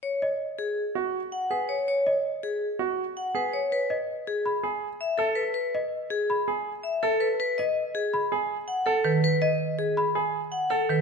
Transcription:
<<
  \new Staff \with { instrumentName = "Celesta" } { \time 5/4 \key fis \dorian \tempo 4 = 163 r8 dis''8 r1 | r8 dis''8 r1 | r8 dis''8 r4 b''8 r2 r8 | r8 dis''8 r4 b''8 r2 r8 |
r8 dis''8 r4 b''8 r2 r8 | r8 dis''8 r4 b''8 r2 r8 | }
  \new Staff \with { instrumentName = "Vibraphone" } { \time 5/4 \key fis \dorian cis''8 r4 gis'8 r4. fis''8 b'8 cis''8 | cis''8 r4 gis'8 r4. fis''8 b'8 cis''8 | b'8 r4 gis'8 r4. e''8 a'8 b'8 | b'8 r4 gis'8 r4. e''8 a'8 b'8 |
b'8 dis''8 r8 gis'8 r4. fis''8 a'8 b'8 | b'8 dis''8 r8 gis'8 r4. fis''8 a'8 b'8 | }
  \new Staff \with { instrumentName = "Grand piano" } { \time 5/4 \key fis \dorian r2 r8 fis'8 r4 gis'8 r8 | r2 r8 fis'8 r4 gis'8 r8 | r2 r8 gis'8 r4 a'8 r8 | r2 r8 gis'8 r4 a'8 r8 |
r2 r8 gis'8 r4 a'8 r8 | r2 r8 gis'8 r4 a'8 r8 | }
  \new Staff \with { instrumentName = "Marimba" } { \clef bass \time 5/4 \key fis \dorian r1 r4 | r1 r4 | r1 r4 | r1 r4 |
r1 r8 dis8 | r1 r8 dis8 | }
>>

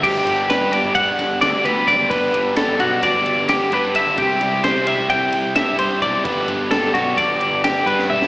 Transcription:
<<
  \new Staff \with { instrumentName = "Clean electric guitar" } { \time 9/8 \key g \major \tempo 4. = 87 g'4 b'8 d''8 fis''4 d''8 b'8 d''8 | b'4 a'8 fis'8 d''4 g'8 b'8 e''8 | g'4 c''8 e''8 g''4 e''8 c''8 d''8 | b'4 a'8 fis'8 d''4 g'8 b'8 e''8 | }
  \new Staff \with { instrumentName = "Overdriven electric guitar" } { \time 9/8 \key g \major <g, d g b d' g'>8 <g b d' g'>8 <g b d' g'>8 <g b d' g'>8 <g, d g b d' g'>4 <g b d' g'>8 <g b d' g'>8 <g, d g b d' g'>8 | <g, d g b d' g'>8 <g b d' g'>8 <g b d' g'>8 <g b d' g'>8 <g, d g b d' g'>4 <g b d' g'>8 <g b d' g'>8 <g, d g b d' g'>8 | <c g c' e' g'>8 <c' e' g'>8 <g c' e' g'>8 <c' e' g'>8 <c g c' e' g'>4 <g c' e' g'>8 <c' e' g'>8 <c g c' e' g'>8 | <g, d g b d' g'>8 <g b d' g'>8 <g b d' g'>8 <g b d' g'>8 <g, d g b d' g'>4 <g b d' g'>8 <g b d' g'>8 <g, d g b d' g'>8 | }
  \new Staff \with { instrumentName = "Picked electric bass" } { \clef bass \time 9/8 \key g \major g,,8 g,,8. g,8 g,,8 r16 g,,16 r16 d,16 r16 d,16 r16 fis,,8 | r8 g,,8 r16 g,,16 b,,8 g,,16 g,,8 g,,8 r16 g,8. g,,16 | c,8 c,8. c8 c,8 r16 c,16 r16 g,16 r16 g,16 r16 b,,16 r16 | g,,8 g,,8 r16 g,,16 b,,8 g,,16 g,,8 g,,8 r16 g,8. g,,16 | }
  \new DrumStaff \with { instrumentName = "Drums" } \drummode { \time 9/8 <cymc bd cymr>8 cymr8 <cymr sn>8 cymr8 <bd cymr>8 <cymr sn>8 <cymr sn>8 cymr8 <bd cymr sn>8 | <bd cymr>8 cymr8 <cymr sn>8 cymr8 <bd cymr sn>8 cymr8 <cymr sn>8 cymr8 cymr8 | <bd cymr>8 cymr8 <cymr sn>8 cymr8 <bd cymr sn>8 cymr8 <cymr sn>8 cymr8 <bd cymr>8 | <bd cymr>8 cymr8 <cymr sn>8 <cymr sn>8 <bd cymr>8 cymr8 <cymr sn>8 cymr16 sn16 toml16 sn16 | }
>>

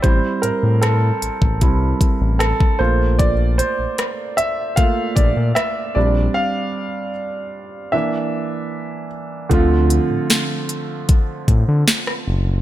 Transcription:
<<
  \new Staff \with { instrumentName = "Grand piano" } { \time 4/4 \key d \minor \tempo 4 = 76 c''8 bes'8 a'2 a'8 c''8 | d''8 c''4 e''8 f''8 d''8 e''8 d''8 | f''2 e''4. r8 | <d f a c' f'>1 | }
  \new Staff \with { instrumentName = "Grand piano" } { \time 4/4 \key d \minor <g c' e'>2 <g c' e'>8 r4 <a bes f'>8 | r2 <a bes f'>8 r4 <g c' d'>8~ | <g c' d'>4 r4 <e bes d'>2 | r1 | }
  \new Staff \with { instrumentName = "Analog synth bass" } { \clef bass \time 4/4 \key d \minor a,,16 r16 a,16 a,8. a,,16 a,,16 c,8 r16 a,,8 r16 bes,,8~ | bes,,8. bes,,16 r4. bes,,16 bes,16 r8 bes,,8 | r1 | d,8. a,16 r4. a,16 d16 r8 fis,,8 | }
  \new DrumStaff \with { instrumentName = "Drums" } \drummode { \time 4/4 <hh bd>8 hh8 <hh ss>8 hh16 bd16 <hh bd>8 <hh bd>8 <hh ss>16 bd8. | <hh bd>8 hh8 <hh ss>8 hh8 <hh bd>8 <hh bd>8 <hh ss>4 | r4 r4 r4 r4 | <hh bd>8 hh8 <hh sn>8 hh8 <hh bd>8 <hh bd>8 <hh sn>16 ss8. | }
>>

